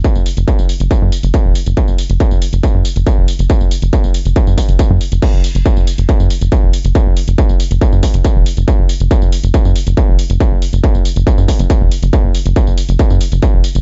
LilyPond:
<<
  \new Staff \with { instrumentName = "Analog synth bass" } { \clef bass \time 4/4 \key e \dorian \tempo 4 = 139 r16 fis,,16 r16 fis,,16 r16 fis,,16 r16 fis,,16 r16 fis,16 r16 fis,,16 r16 e,,16 r16 fis,,16 | r16 fis,,16 r16 fis,,16 r16 fis,,16 r16 fis,,16 r16 fis,16 r16 fis,,16 r16 e,,16 r16 fis,,16 | r16 fis,,16 r16 fis,,16 r16 fis,,16 r16 fis,,16 r16 fis,16 r16 fis,,16 r16 fis,16 r16 fis,,16 | r16 fis,,16 r16 fis,,16 r16 fis,,16 r16 fis,,16 r16 fis,16 r16 fis,,16 r16 e,,16 r16 fis,,16 |
r16 fis,,16 r16 fis,,16 r16 fis,,16 r16 fis,,16 r16 fis,16 r16 fis,,16 r16 e,,16 r16 fis,,16 | r16 fis,,16 r16 fis,,16 r16 fis,,16 r16 fis,,16 r16 fis,16 r16 fis,,16 r16 e,,16 r16 fis,,16 | r16 fis,,16 r16 fis,,16 r16 fis,,16 r16 fis,,16 r16 fis,16 r16 fis,,16 r16 e,,16 r16 fis,,16 | r16 fis,,16 r16 fis,,16 r16 fis,,16 r16 fis,,16 r16 fis,16 r16 fis,,16 r16 e,,16 r16 fis,,16 | }
  \new DrumStaff \with { instrumentName = "Drums" } \drummode { \time 4/4 <hh bd tamb>16 tamb16 <hho tamb>16 <hh tamb>16 <hh bd tamb>16 tamb16 <hho tamb>16 <hh tamb>16 <hh bd tamb>8 <hho tamb>16 <hh tamb>16 <hh bd tamb>8 <hho tamb>16 <hh tamb>16 | <hh bd tamb>16 tamb16 <hho tamb>16 <hh tamb>16 <hh bd tamb>16 tamb16 <hho tamb>16 <hh tamb>16 <hh bd tamb>8 <hho tamb>16 <hh tamb>16 <hh bd tamb>8 <hho tamb>16 <hh tamb>16 | <hh bd tamb>16 tamb16 <hho tamb>16 <hh tamb>16 <hh bd tamb>16 tamb16 <hho tamb>16 <hh tamb>16 <hh bd tamb>16 tamb16 <hho bd tamb>16 <hh tamb>16 <hh bd tamb>8 <hho tamb>16 <hh tamb>16 | <cymc hh bd tamb>8 <hho tamb>16 <hh tamb>16 <hh bd tamb>16 tamb16 <hho tamb>16 <hh tamb>16 <hh bd tamb>16 tamb16 <hho tamb>16 <hh tamb>16 <hh bd tamb>8 <hho tamb>16 <hh tamb>16 |
<hh bd tamb>8 <hho tamb>16 <hh tamb>16 <hh bd tamb>16 tamb16 <hho tamb>16 <hh tamb>16 <hh bd tamb>16 tamb16 <hho bd tamb>16 <hh tamb>16 <hh bd tamb>8 <hho tamb>16 <hh tamb>16 | <hh bd tamb>8 <hho tamb>16 <hh tamb>16 <hh bd tamb>16 tamb16 <hho tamb>16 <hh tamb>16 <hh bd tamb>16 tamb16 <hho tamb>16 <hh tamb>16 <hh bd tamb>8 <hho tamb>16 <hh tamb>16 | <hh bd tamb>8 <hho tamb>16 <hh tamb>16 <hh bd tamb>16 tamb16 <hho tamb>16 <hh tamb>16 <hh bd tamb>16 tamb16 <hho bd tamb>16 <hh tamb>16 <hh bd tamb>8 <hho tamb>16 <hh tamb>16 | <hh bd tamb>8 <hho tamb>16 <hh tamb>16 <hh bd tamb>16 tamb16 <hho tamb>16 <hh tamb>16 <hh bd tamb>16 tamb16 <hho tamb>16 <hh tamb>16 <hh bd tamb>8 <hho tamb>16 <hh tamb>16 | }
>>